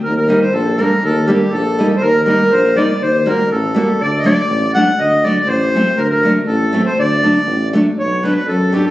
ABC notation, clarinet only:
X:1
M:2/4
L:1/16
Q:1/4=121
K:none
V:1 name="Clarinet"
_B B2 c A2 B2- | _B2 G2 A3 z | _B2 B4 d2 | c3/2 c/2 _B2 A4 |
d2 d4 ^f2 | _e2 d2 c4 | _B B2 z A3 c | d6 z2 |
^c2 B B A2 G A |]